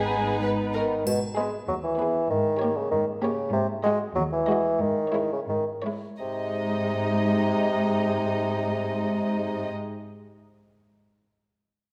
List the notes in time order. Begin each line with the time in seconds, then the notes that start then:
Already playing: G#1 G#3 B3 D#4 G#4 B4 G#5
0.42 B4
0.74 D#3 A#4
1.06 G#2 B2, triangle
1.37 G#3 B3 G#4 B4
1.68 D#2 F#3
1.84 E3
1.98 B3 G#4 B4
2.30 G#2 D#3
2.61 A#3 G4 C#5
2.77 C#3
2.91 G#2 D#3
3.22 C#3 A#3 G4 C#5
3.53 G#2 C3
3.84 G#3 F#4 D#5
4.15 D#2 F#3
4.32 E3
4.48 G#3 F#4 D#5
4.81 G#2 D#3
5.14 G#3 E4 C#5
5.32 C#3
5.49 G#2 D#3
5.84 G#3 E4 C#5
6.20 G#2 C3 G#3 D#4 D#5